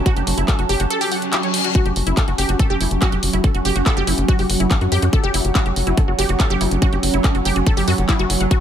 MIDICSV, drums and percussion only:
0, 0, Header, 1, 2, 480
1, 0, Start_track
1, 0, Tempo, 422535
1, 67, Time_signature, 4, 2, 24, 8
1, 9773, End_track
2, 0, Start_track
2, 0, Title_t, "Drums"
2, 67, Note_on_c, 9, 36, 119
2, 67, Note_on_c, 9, 42, 87
2, 181, Note_off_c, 9, 36, 0
2, 181, Note_off_c, 9, 42, 0
2, 187, Note_on_c, 9, 42, 41
2, 301, Note_off_c, 9, 42, 0
2, 307, Note_on_c, 9, 46, 103
2, 421, Note_off_c, 9, 46, 0
2, 427, Note_on_c, 9, 42, 54
2, 541, Note_off_c, 9, 42, 0
2, 547, Note_on_c, 9, 36, 118
2, 547, Note_on_c, 9, 39, 124
2, 547, Note_on_c, 9, 42, 85
2, 661, Note_off_c, 9, 36, 0
2, 661, Note_off_c, 9, 39, 0
2, 661, Note_off_c, 9, 42, 0
2, 667, Note_on_c, 9, 42, 40
2, 781, Note_off_c, 9, 42, 0
2, 787, Note_on_c, 9, 46, 101
2, 901, Note_off_c, 9, 46, 0
2, 907, Note_on_c, 9, 42, 55
2, 1021, Note_off_c, 9, 42, 0
2, 1028, Note_on_c, 9, 42, 86
2, 1141, Note_off_c, 9, 42, 0
2, 1147, Note_on_c, 9, 46, 62
2, 1261, Note_off_c, 9, 46, 0
2, 1267, Note_on_c, 9, 46, 105
2, 1381, Note_off_c, 9, 46, 0
2, 1388, Note_on_c, 9, 42, 56
2, 1501, Note_off_c, 9, 42, 0
2, 1507, Note_on_c, 9, 39, 125
2, 1507, Note_on_c, 9, 42, 84
2, 1621, Note_off_c, 9, 39, 0
2, 1621, Note_off_c, 9, 42, 0
2, 1627, Note_on_c, 9, 42, 38
2, 1741, Note_off_c, 9, 42, 0
2, 1747, Note_on_c, 9, 46, 110
2, 1861, Note_off_c, 9, 46, 0
2, 1867, Note_on_c, 9, 42, 57
2, 1981, Note_off_c, 9, 42, 0
2, 1987, Note_on_c, 9, 36, 123
2, 1987, Note_on_c, 9, 42, 85
2, 2101, Note_off_c, 9, 36, 0
2, 2101, Note_off_c, 9, 42, 0
2, 2108, Note_on_c, 9, 42, 40
2, 2221, Note_off_c, 9, 42, 0
2, 2227, Note_on_c, 9, 46, 107
2, 2341, Note_off_c, 9, 46, 0
2, 2348, Note_on_c, 9, 42, 56
2, 2461, Note_off_c, 9, 42, 0
2, 2467, Note_on_c, 9, 36, 123
2, 2468, Note_on_c, 9, 39, 126
2, 2468, Note_on_c, 9, 42, 84
2, 2581, Note_off_c, 9, 36, 0
2, 2581, Note_off_c, 9, 39, 0
2, 2581, Note_off_c, 9, 42, 0
2, 2588, Note_on_c, 9, 42, 40
2, 2701, Note_off_c, 9, 42, 0
2, 2708, Note_on_c, 9, 46, 105
2, 2821, Note_off_c, 9, 46, 0
2, 2828, Note_on_c, 9, 42, 55
2, 2941, Note_off_c, 9, 42, 0
2, 2947, Note_on_c, 9, 36, 123
2, 2948, Note_on_c, 9, 42, 86
2, 3061, Note_off_c, 9, 36, 0
2, 3061, Note_off_c, 9, 42, 0
2, 3188, Note_on_c, 9, 46, 110
2, 3301, Note_off_c, 9, 46, 0
2, 3307, Note_on_c, 9, 42, 56
2, 3421, Note_off_c, 9, 42, 0
2, 3427, Note_on_c, 9, 36, 120
2, 3427, Note_on_c, 9, 39, 127
2, 3427, Note_on_c, 9, 42, 87
2, 3541, Note_off_c, 9, 36, 0
2, 3541, Note_off_c, 9, 39, 0
2, 3541, Note_off_c, 9, 42, 0
2, 3548, Note_on_c, 9, 42, 40
2, 3661, Note_off_c, 9, 42, 0
2, 3667, Note_on_c, 9, 46, 115
2, 3781, Note_off_c, 9, 46, 0
2, 3787, Note_on_c, 9, 42, 57
2, 3901, Note_off_c, 9, 42, 0
2, 3907, Note_on_c, 9, 36, 127
2, 3908, Note_on_c, 9, 42, 85
2, 4021, Note_off_c, 9, 36, 0
2, 4021, Note_off_c, 9, 42, 0
2, 4027, Note_on_c, 9, 42, 40
2, 4141, Note_off_c, 9, 42, 0
2, 4147, Note_on_c, 9, 46, 113
2, 4261, Note_off_c, 9, 46, 0
2, 4267, Note_on_c, 9, 42, 53
2, 4381, Note_off_c, 9, 42, 0
2, 4387, Note_on_c, 9, 36, 124
2, 4387, Note_on_c, 9, 39, 127
2, 4387, Note_on_c, 9, 42, 82
2, 4501, Note_off_c, 9, 36, 0
2, 4501, Note_off_c, 9, 39, 0
2, 4501, Note_off_c, 9, 42, 0
2, 4507, Note_on_c, 9, 42, 39
2, 4621, Note_off_c, 9, 42, 0
2, 4627, Note_on_c, 9, 46, 108
2, 4741, Note_off_c, 9, 46, 0
2, 4747, Note_on_c, 9, 42, 55
2, 4861, Note_off_c, 9, 42, 0
2, 4867, Note_on_c, 9, 36, 126
2, 4867, Note_on_c, 9, 42, 83
2, 4981, Note_off_c, 9, 36, 0
2, 4981, Note_off_c, 9, 42, 0
2, 4987, Note_on_c, 9, 46, 64
2, 5101, Note_off_c, 9, 46, 0
2, 5107, Note_on_c, 9, 46, 113
2, 5221, Note_off_c, 9, 46, 0
2, 5227, Note_on_c, 9, 42, 55
2, 5341, Note_off_c, 9, 42, 0
2, 5347, Note_on_c, 9, 36, 124
2, 5347, Note_on_c, 9, 39, 127
2, 5347, Note_on_c, 9, 42, 82
2, 5461, Note_off_c, 9, 36, 0
2, 5461, Note_off_c, 9, 39, 0
2, 5461, Note_off_c, 9, 42, 0
2, 5467, Note_on_c, 9, 42, 37
2, 5581, Note_off_c, 9, 42, 0
2, 5587, Note_on_c, 9, 46, 118
2, 5701, Note_off_c, 9, 46, 0
2, 5707, Note_on_c, 9, 42, 54
2, 5821, Note_off_c, 9, 42, 0
2, 5827, Note_on_c, 9, 36, 127
2, 5827, Note_on_c, 9, 42, 82
2, 5941, Note_off_c, 9, 36, 0
2, 5941, Note_off_c, 9, 42, 0
2, 5947, Note_on_c, 9, 42, 37
2, 6061, Note_off_c, 9, 42, 0
2, 6067, Note_on_c, 9, 46, 116
2, 6181, Note_off_c, 9, 46, 0
2, 6187, Note_on_c, 9, 42, 52
2, 6301, Note_off_c, 9, 42, 0
2, 6307, Note_on_c, 9, 36, 127
2, 6307, Note_on_c, 9, 39, 123
2, 6307, Note_on_c, 9, 42, 78
2, 6421, Note_off_c, 9, 36, 0
2, 6421, Note_off_c, 9, 39, 0
2, 6421, Note_off_c, 9, 42, 0
2, 6427, Note_on_c, 9, 42, 38
2, 6541, Note_off_c, 9, 42, 0
2, 6547, Note_on_c, 9, 46, 114
2, 6661, Note_off_c, 9, 46, 0
2, 6667, Note_on_c, 9, 42, 52
2, 6781, Note_off_c, 9, 42, 0
2, 6787, Note_on_c, 9, 36, 127
2, 6788, Note_on_c, 9, 42, 80
2, 6901, Note_off_c, 9, 36, 0
2, 6901, Note_off_c, 9, 42, 0
2, 7027, Note_on_c, 9, 46, 115
2, 7141, Note_off_c, 9, 46, 0
2, 7147, Note_on_c, 9, 42, 52
2, 7261, Note_off_c, 9, 42, 0
2, 7267, Note_on_c, 9, 36, 127
2, 7267, Note_on_c, 9, 39, 125
2, 7267, Note_on_c, 9, 42, 80
2, 7381, Note_off_c, 9, 36, 0
2, 7381, Note_off_c, 9, 39, 0
2, 7381, Note_off_c, 9, 42, 0
2, 7387, Note_on_c, 9, 42, 36
2, 7501, Note_off_c, 9, 42, 0
2, 7507, Note_on_c, 9, 46, 119
2, 7621, Note_off_c, 9, 46, 0
2, 7627, Note_on_c, 9, 42, 52
2, 7741, Note_off_c, 9, 42, 0
2, 7747, Note_on_c, 9, 42, 78
2, 7748, Note_on_c, 9, 36, 125
2, 7861, Note_off_c, 9, 36, 0
2, 7861, Note_off_c, 9, 42, 0
2, 7867, Note_on_c, 9, 42, 37
2, 7981, Note_off_c, 9, 42, 0
2, 7987, Note_on_c, 9, 46, 112
2, 8101, Note_off_c, 9, 46, 0
2, 8107, Note_on_c, 9, 42, 50
2, 8221, Note_off_c, 9, 42, 0
2, 8227, Note_on_c, 9, 36, 127
2, 8227, Note_on_c, 9, 39, 120
2, 8227, Note_on_c, 9, 42, 77
2, 8341, Note_off_c, 9, 36, 0
2, 8341, Note_off_c, 9, 39, 0
2, 8341, Note_off_c, 9, 42, 0
2, 8347, Note_on_c, 9, 42, 37
2, 8461, Note_off_c, 9, 42, 0
2, 8467, Note_on_c, 9, 46, 111
2, 8581, Note_off_c, 9, 46, 0
2, 8587, Note_on_c, 9, 42, 51
2, 8701, Note_off_c, 9, 42, 0
2, 8707, Note_on_c, 9, 42, 78
2, 8708, Note_on_c, 9, 36, 127
2, 8821, Note_off_c, 9, 36, 0
2, 8821, Note_off_c, 9, 42, 0
2, 8827, Note_on_c, 9, 46, 64
2, 8941, Note_off_c, 9, 46, 0
2, 8947, Note_on_c, 9, 46, 114
2, 9061, Note_off_c, 9, 46, 0
2, 9067, Note_on_c, 9, 42, 50
2, 9181, Note_off_c, 9, 42, 0
2, 9187, Note_on_c, 9, 36, 126
2, 9187, Note_on_c, 9, 39, 118
2, 9187, Note_on_c, 9, 42, 76
2, 9301, Note_off_c, 9, 36, 0
2, 9301, Note_off_c, 9, 39, 0
2, 9301, Note_off_c, 9, 42, 0
2, 9307, Note_on_c, 9, 42, 34
2, 9421, Note_off_c, 9, 42, 0
2, 9427, Note_on_c, 9, 46, 115
2, 9541, Note_off_c, 9, 46, 0
2, 9548, Note_on_c, 9, 42, 51
2, 9661, Note_off_c, 9, 42, 0
2, 9667, Note_on_c, 9, 36, 123
2, 9667, Note_on_c, 9, 42, 79
2, 9773, Note_off_c, 9, 36, 0
2, 9773, Note_off_c, 9, 42, 0
2, 9773, End_track
0, 0, End_of_file